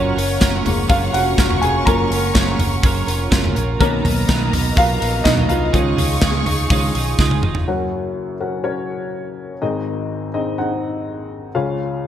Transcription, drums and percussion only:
0.18 hi-hat pedal, open hi-hat
0.41 kick, snare, hi-hat pedal, open hi-hat
0.66 floor tom, hi-hat pedal, open hi-hat
0.90 kick, hi-hat pedal, open hi-hat
1.14 hi-hat pedal, open hi-hat
1.38 kick, snare, hi-hat pedal, open hi-hat
1.50 floor tom
1.63 hi-hat pedal, open hi-hat
1.87 kick, hi-hat pedal, open hi-hat
2.11 hi-hat pedal, open hi-hat
2.35 kick, snare, hi-hat pedal, open hi-hat
2.59 floor tom, hi-hat pedal, open hi-hat
2.83 kick, hi-hat pedal, open hi-hat
3.08 hi-hat pedal, open hi-hat
3.32 kick, snare, hi-hat pedal, open hi-hat
3.44 floor tom
3.56 hi-hat pedal, open hi-hat
3.81 kick, hi-hat pedal, open hi-hat
4.05 floor tom, hi-hat pedal, open hi-hat
4.29 kick, snare, hi-hat pedal, open hi-hat
4.53 floor tom, hi-hat pedal, open hi-hat
4.77 kick, hi-hat pedal, open hi-hat
5.02 hi-hat pedal, open hi-hat
5.25 kick, snare, hi-hat pedal, open hi-hat
5.37 floor tom
5.49 hi-hat pedal, open hi-hat
5.74 kick, hi-hat pedal, open hi-hat
5.98 floor tom, hi-hat pedal, open hi-hat
6.21 kick, snare, hi-hat pedal, open hi-hat
6.46 floor tom, hi-hat pedal, open hi-hat
6.70 kick, hi-hat pedal, open hi-hat
6.95 hi-hat pedal, open hi-hat
7.19 kick, snare
7.31 high tom
7.43 mid tom
7.55 floor tom

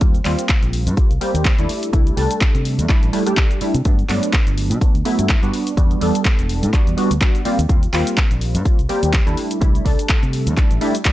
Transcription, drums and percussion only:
0.01 kick, closed hi-hat, cabasa
0.14 closed hi-hat, cabasa
0.25 clap, open hi-hat
0.39 closed hi-hat, cabasa
0.49 kick, clap, closed hi-hat, cabasa
0.63 closed hi-hat, cabasa
0.73 open hi-hat
0.87 closed hi-hat, cabasa
0.97 kick, closed hi-hat, cabasa
1.11 closed hi-hat, cabasa
1.21 open hi-hat
1.35 closed hi-hat, cabasa
1.45 kick, clap, closed hi-hat, cabasa
1.58 closed hi-hat, cabasa
1.69 open hi-hat
1.83 closed hi-hat, cabasa
1.93 kick, closed hi-hat, cabasa
2.07 closed hi-hat, cabasa
2.17 open hi-hat
2.31 closed hi-hat, cabasa
2.41 kick, clap, closed hi-hat, cabasa
2.55 closed hi-hat, cabasa
2.65 open hi-hat
2.79 closed hi-hat, cabasa
2.89 kick, clap, closed hi-hat, cabasa
3.03 closed hi-hat, cabasa
3.13 open hi-hat
3.27 closed hi-hat, cabasa
3.37 kick, clap, closed hi-hat, cabasa
3.51 closed hi-hat, cabasa
3.61 open hi-hat
3.74 closed hi-hat, cabasa
3.85 kick, closed hi-hat, cabasa
3.99 closed hi-hat, cabasa
4.09 clap, open hi-hat
4.23 closed hi-hat, cabasa
4.33 kick, clap, closed hi-hat, cabasa
4.47 closed hi-hat, cabasa
4.58 open hi-hat
4.71 closed hi-hat, cabasa
4.81 kick, closed hi-hat, cabasa
4.95 closed hi-hat, cabasa
5.05 open hi-hat
5.19 closed hi-hat, cabasa
5.29 kick, clap, closed hi-hat, cabasa
5.43 closed hi-hat, cabasa
5.53 open hi-hat
5.67 closed hi-hat, cabasa
5.77 kick, closed hi-hat, cabasa
5.91 closed hi-hat, cabasa
6.01 open hi-hat
6.15 closed hi-hat, cabasa
6.25 kick, clap, closed hi-hat, cabasa
6.39 closed hi-hat, cabasa
6.49 open hi-hat
6.63 closed hi-hat, cabasa
6.73 kick, clap, closed hi-hat, cabasa
6.87 closed hi-hat, cabasa
6.98 open hi-hat
7.11 closed hi-hat, cabasa
7.21 kick, clap, closed hi-hat, cabasa
7.35 closed hi-hat, cabasa
7.45 open hi-hat
7.59 closed hi-hat, cabasa
7.69 kick, closed hi-hat, cabasa
7.83 closed hi-hat, cabasa
7.94 clap, open hi-hat
8.07 closed hi-hat, cabasa
8.17 kick, clap, closed hi-hat, cabasa
8.31 closed hi-hat, cabasa
8.41 open hi-hat
8.55 closed hi-hat, cabasa
8.65 kick, closed hi-hat, cabasa
8.79 closed hi-hat, cabasa
8.89 open hi-hat
9.03 closed hi-hat, cabasa
9.13 kick, clap, closed hi-hat, cabasa
9.27 closed hi-hat, cabasa
9.37 open hi-hat
9.51 closed hi-hat, cabasa
9.62 kick, closed hi-hat, cabasa
9.75 closed hi-hat, cabasa
9.86 kick, open hi-hat
9.99 closed hi-hat, cabasa
10.09 kick, clap, closed hi-hat, cabasa
10.23 closed hi-hat, cabasa
10.33 open hi-hat
10.47 closed hi-hat, cabasa
10.57 kick, clap, closed hi-hat, cabasa
10.71 closed hi-hat, cabasa
10.81 open hi-hat
10.95 closed hi-hat, cabasa
11.05 kick, snare, clap, closed hi-hat, cabasa

